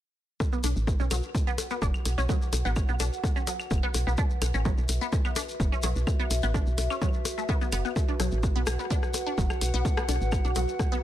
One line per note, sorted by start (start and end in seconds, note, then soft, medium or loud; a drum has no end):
0.40 11.03 F#4 medium
0.40 kick loud
0.40 percussion blips medium
0.40 shekere soft
0.47 11.03 B4 medium
0.53 0.57 B3 medium
0.53 shekere soft
0.64 0.74 B1 medium
0.64 0.69 D4 medium
0.64 open hi-hat medium
0.64 percussion blips soft
0.64 shekere medium
0.76 0.95 A1 medium
0.76 shekere soft
0.82 4.63 F#5 medium
0.87 kick loud
0.87 percussion blips medium
0.87 shekere medium
1.00 1.09 B1 loud
1.00 1.05 C#4 medium
1.00 shekere soft
1.11 1.21 B1 medium
1.11 1.16 F#3 medium
1.11 open hi-hat medium
1.11 percussion blips medium
1.11 claves medium
1.11 shekere medium
1.23 shekere soft
1.35 kick loud
1.35 percussion blips soft
1.35 shekere medium
1.47 1.50 B3 loud
1.47 shekere soft
1.58 open hi-hat medium
1.58 percussion blips medium
1.58 shekere medium
1.70 1.76 B3 medium
1.70 shekere soft
1.82 1.92 F#1 medium
1.82 1.87 D4 medium
1.82 kick loud
1.82 percussion blips medium
1.82 shekere medium
1.94 claves medium
1.94 shekere soft
2.05 2.16 B1 medium
2.05 open hi-hat medium
2.05 percussion blips soft
2.05 shekere medium
2.18 2.27 B1 medium
2.18 2.23 C#4 medium
2.18 shekere soft
2.29 2.35 F#3 medium
2.29 kick loud
2.29 percussion blips medium
2.29 shekere medium
2.42 shekere soft
2.53 2.63 B1 loud
2.53 open hi-hat medium
2.53 percussion blips medium
2.53 shekere medium
2.65 2.84 A1 medium
2.65 2.68 B3 loud
2.65 shekere soft
2.76 kick loud
2.76 percussion blips soft
2.76 claves medium
2.76 shekere medium
2.88 2.98 B1 loud
2.88 2.94 B3 medium
2.88 shekere soft
3.00 3.10 B1 medium
3.00 3.05 D4 medium
3.00 open hi-hat medium
3.00 percussion blips medium
3.00 shekere medium
3.13 shekere soft
3.24 kick loud
3.24 percussion blips medium
3.24 shekere soft
3.36 3.41 C#4 medium
3.36 shekere soft
3.47 3.53 F#3 medium
3.47 open hi-hat loud
3.47 percussion blips soft
3.47 shekere loud
3.60 claves medium
3.60 shekere soft
3.71 3.81 F#1 loud
3.71 kick loud
3.71 percussion blips medium
3.71 shekere medium
3.83 3.86 B3 loud
3.83 shekere soft
3.94 4.05 B1 loud
3.94 open hi-hat medium
3.94 percussion blips medium
3.94 shekere medium
4.07 4.16 B1 medium
4.07 4.12 B3 medium
4.07 shekere soft
4.17 4.24 D4 medium
4.17 kick loud
4.17 percussion blips soft
4.17 shekere medium
4.30 shekere soft
4.42 4.52 B1 medium
4.42 open hi-hat medium
4.42 percussion blips medium
4.42 claves medium
4.42 shekere medium
4.54 4.73 A1 medium
4.54 4.59 C#4 medium
4.54 shekere soft
4.60 8.40 E5 medium
4.65 4.71 F#3 medium
4.65 kick loud
4.65 percussion blips medium
4.65 shekere soft
4.78 4.87 B1 loud
4.78 shekere soft
4.89 4.99 B1 medium
4.89 open hi-hat loud
4.89 percussion blips soft
4.89 shekere medium
5.01 5.04 B3 loud
5.01 shekere soft
5.13 kick loud
5.13 percussion blips medium
5.13 shekere medium
5.25 5.30 B3 medium
5.25 claves medium
5.25 shekere soft
5.36 5.42 D4 medium
5.36 open hi-hat loud
5.36 percussion blips medium
5.36 shekere loud
5.49 shekere soft
5.60 5.70 F#1 medium
5.60 kick loud
5.60 percussion blips soft
5.60 shekere medium
5.72 5.77 C#4 medium
5.72 shekere soft
5.82 5.94 B1 medium
5.82 5.89 F#3 medium
5.82 open hi-hat medium
5.82 percussion blips medium
5.82 shekere medium
5.96 6.05 B1 medium
5.96 shekere soft
6.07 kick loud
6.07 percussion blips medium
6.07 claves medium
6.07 shekere medium
6.20 6.22 B3 loud
6.20 shekere soft
6.31 6.41 B1 loud
6.31 open hi-hat loud
6.31 percussion blips soft
6.31 shekere medium
6.42 6.62 A1 medium
6.42 6.48 B3 medium
6.42 shekere soft
6.54 6.60 D4 medium
6.54 kick loud
6.54 percussion blips medium
6.54 shekere medium
6.66 6.76 B1 medium
6.66 shekere soft
6.78 6.88 B1 medium
6.78 open hi-hat loud
6.78 percussion blips medium
6.78 shekere medium
6.90 6.95 C#4 medium
6.90 claves medium
6.90 shekere soft
7.02 7.07 F#3 medium
7.02 kick loud
7.02 percussion blips soft
7.02 shekere medium
7.13 shekere soft
7.25 open hi-hat medium
7.25 percussion blips medium
7.25 shekere loud
7.38 7.43 A3 medium
7.38 shekere soft
7.48 7.57 B3 loud
7.48 kick loud
7.48 percussion blips medium
7.48 shekere soft
7.61 7.69 B3 medium
7.61 shekere soft
7.72 7.82 F#1 medium
7.72 7.78 B3 loud
7.72 open hi-hat loud
7.72 percussion blips soft
7.72 claves medium
7.72 shekere medium
7.85 7.88 B3 medium
7.85 shekere soft
7.96 kick loud
7.96 percussion blips medium
7.96 shekere soft
8.08 8.13 D4 medium
8.08 shekere soft
8.20 8.30 B1 loud
8.20 8.25 F#3 medium
8.20 cross-stick soft
8.20 open hi-hat medium
8.20 percussion blips soft
8.20 shekere medium
8.31 8.51 A1 medium
8.31 shekere soft
8.38 11.03 F#5 medium
8.43 kick loud
8.43 percussion blips medium
8.43 shekere medium
8.56 8.65 B1 loud
8.56 8.59 B3 loud
8.56 shekere soft
8.67 8.77 B1 medium
8.67 cross-stick medium
8.67 open hi-hat medium
8.67 percussion blips medium
8.67 claves medium
8.67 shekere medium
8.79 8.84 B3 medium
8.79 shekere soft
8.90 8.96 D4 medium
8.90 kick loud
8.90 percussion blips soft
8.90 shekere medium
9.03 cross-stick soft
9.03 shekere soft
9.14 open hi-hat medium
9.14 percussion blips medium
9.14 shekere loud
9.27 9.31 D4 medium
9.27 shekere soft
9.38 9.48 F#1 medium
9.38 9.43 F#3 medium
9.38 kick loud
9.38 percussion blips medium
9.38 shekere medium
9.50 cross-stick soft
9.50 claves medium
9.50 shekere soft
9.61 9.71 B1 medium
9.61 open hi-hat medium
9.61 percussion blips soft
9.61 shekere medium
9.74 9.83 B1 medium
9.74 9.77 B3 loud
9.74 shekere soft
9.85 kick loud
9.85 percussion blips medium
9.85 shekere medium
9.97 10.02 B3 medium
9.97 cross-stick medium
9.97 shekere soft
10.09 10.19 B1 medium
10.09 10.14 D4 medium
10.09 open hi-hat medium
10.09 percussion blips medium
10.09 shekere medium
10.21 10.40 A1 medium
10.21 shekere soft
10.32 kick loud
10.32 cross-stick soft
10.32 percussion blips soft
10.32 claves medium
10.32 shekere soft
10.44 10.54 B1 loud
10.44 10.50 D4 medium
10.44 shekere soft
10.55 10.66 B1 loud
10.55 10.61 F#3 medium
10.55 open hi-hat medium
10.55 percussion blips medium
10.55 shekere medium
10.68 shekere soft
10.79 kick loud
10.79 cross-stick soft
10.79 percussion blips medium
10.79 shekere soft
10.92 10.95 B3 loud
10.92 shekere soft